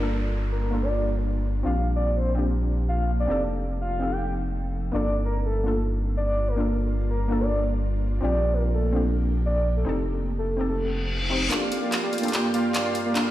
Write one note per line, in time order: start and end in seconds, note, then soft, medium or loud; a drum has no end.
0.00 1.63 G1 medium
0.00 1.62 G3 medium
0.00 0.69 A#3 medium
0.00 1.62 A#3 medium
0.00 3.25 D4 medium
0.00 0.70 D4 medium
0.00 1.62 F4 medium
0.00 0.70 F4 medium
0.00 0.71 A4 medium
0.00 0.13 A#4 medium
0.00 downlifter medium
0.52 0.84 A#4 medium
0.71 1.62 A#3 medium
0.71 1.62 D4 medium
0.71 1.63 F4 medium
0.75 1.64 A4 medium
0.83 1.06 D5 medium
1.63 3.27 A#1 medium
1.63 2.34 C4 medium
1.63 2.34 D4 medium
1.63 2.35 F4 medium
1.63 1.88 F5 loud
1.67 2.36 G4 medium
1.96 2.11 D5 medium
2.17 2.47 C5 loud
2.35 3.26 C4 medium
2.35 3.27 D4 medium
2.35 3.27 F4 medium
2.35 3.28 G4 medium
2.89 3.11 F5 loud
3.20 3.42 D5 loud
3.27 4.92 F1 medium
3.27 3.98 C4 medium
3.27 3.99 D#4 medium
3.27 3.99 G4 medium
3.31 4.00 A4 medium
3.81 4.13 F5 medium
3.99 4.90 C4 medium
3.99 4.91 D#4 medium
3.99 4.92 G4 medium
3.99 4.92 A4 medium
4.12 4.34 G5 medium
4.92 8.21 G1 medium
4.92 8.19 G3 medium
4.92 5.62 A#3 medium
4.92 8.19 A#3 medium
4.92 5.63 D4 medium
4.92 9.83 D4 medium
4.92 8.19 F4 medium
4.92 5.64 F4 medium
4.92 5.64 A4 medium
4.92 5.17 D5 loud
5.25 5.40 A#4 medium
5.45 5.76 A4 medium
5.64 6.55 A#3 medium
5.64 6.55 D4 medium
5.64 6.56 F4 medium
5.68 6.57 A4 medium
6.17 6.49 D5 loud
6.48 6.71 A#4 medium
6.56 7.27 A#3 medium
6.56 7.27 D4 medium
6.56 7.28 F4 medium
6.56 7.29 A4 medium
7.10 7.42 A#4 medium
7.28 8.19 A#3 medium
7.28 8.20 D4 medium
7.28 8.20 F4 medium
7.32 8.21 A4 medium
7.41 7.63 D5 medium
8.21 9.85 A#1 medium
8.21 8.91 C4 medium
8.21 8.92 D4 medium
8.21 8.92 F4 medium
8.21 8.93 G4 medium
8.21 8.55 D5 loud
8.53 8.69 A#4 medium
8.74 9.04 A4 medium
8.92 9.83 C4 medium
8.92 9.84 D4 medium
8.92 9.85 F4 medium
8.92 9.85 G4 medium
9.46 9.69 D5 medium
9.77 10.00 A4 loud
9.85 11.49 F1 medium
9.85 10.55 C4 medium
9.85 10.56 D#4 medium
9.85 10.57 G4 medium
9.89 10.57 A4 medium
10.38 10.61 A4 medium
10.57 11.28 C4 medium
10.57 11.28 D#4 medium
10.57 11.29 G4 medium
10.57 11.30 A4 medium
10.69 10.92 A4 medium
10.69 reverse cymbal medium
11.30 11.48 C4 medium
11.30 11.49 D#4 medium
11.30 11.49 G4 medium
11.30 11.49 C5 medium
11.49 13.31 G2 medium
11.49 13.31 G3 medium
11.49 12.20 A#3 medium
11.49 13.31 A#3 medium
11.49 11.63 A#3 loud
11.49 12.20 D4 medium
11.49 13.31 F4 medium
11.49 11.63 F4 medium
11.49 12.21 F4 medium
11.49 11.63 G4 medium
11.49 12.22 A4 medium
11.49 11.63 D5 medium
11.49 11.74 D5 loud
11.49 11.63 F5 loud
11.49 clap soft
11.49 closed hi-hat medium
11.49 riser medium
11.71 11.80 A#3 medium
11.71 11.80 F4 medium
11.71 11.81 G4 medium
11.71 11.80 D5 medium
11.71 11.80 F5 medium
11.71 closed hi-hat medium
11.82 11.94 A#3 medium
11.82 11.94 F4 medium
11.82 11.94 G4 medium
11.82 11.97 A#4 medium
11.82 11.94 D5 medium
11.82 11.94 F5 loud
11.92 clap soft
11.92 closed hi-hat medium
12.02 12.21 A#3 medium
12.02 12.21 F4 medium
12.02 12.21 G4 medium
12.02 12.33 A4 loud
12.02 12.21 D5 medium
12.02 12.21 F5 loud
12.13 closed hi-hat soft
12.18 13.12 A#3 medium
12.18 closed hi-hat medium
12.22 12.31 A#3 loud
12.22 13.13 D4 medium
12.22 12.31 F4 medium
12.22 13.14 F4 medium
12.22 12.31 G4 medium
12.22 13.14 A4 medium
12.22 12.31 D5 medium
12.22 12.31 F5 loud
12.22 closed hi-hat soft
12.28 closed hi-hat medium
12.33 12.45 A#3 medium
12.33 12.45 F4 medium
12.33 12.45 G4 medium
12.33 12.45 D5 medium
12.33 12.45 G5 medium
12.33 clap soft
12.33 closed hi-hat medium
12.54 12.62 A#3 medium
12.54 12.62 F4 medium
12.54 12.62 G4 medium
12.54 12.62 D5 medium
12.54 12.62 F5 loud
12.54 closed hi-hat medium
12.64 12.82 A#3 loud
12.64 12.82 F4 medium
12.64 12.82 G4 medium
12.64 12.82 D5 medium
12.64 12.82 F5 loud
12.74 12.97 D5 loud
12.74 clap medium
12.74 closed hi-hat medium
12.85 12.97 A#3 medium
12.85 12.97 F4 medium
12.85 12.97 G4 medium
12.85 12.97 D5 medium
12.85 12.97 F5 medium
12.95 closed hi-hat medium
13.05 13.13 A#3 medium
13.05 13.13 F4 medium
13.05 13.13 G4 medium
13.05 13.28 A#4 loud
13.05 13.13 D5 medium
13.05 13.13 F5 medium
13.14 13.31 A#3 medium
13.14 13.27 A#3 loud
13.14 13.31 D4 medium
13.14 13.27 F4 medium
13.14 13.31 F4 medium
13.14 13.27 G4 medium
13.14 13.27 D5 medium
13.14 13.27 F5 loud
13.14 clap medium
13.14 closed hi-hat medium
13.18 13.31 A4 medium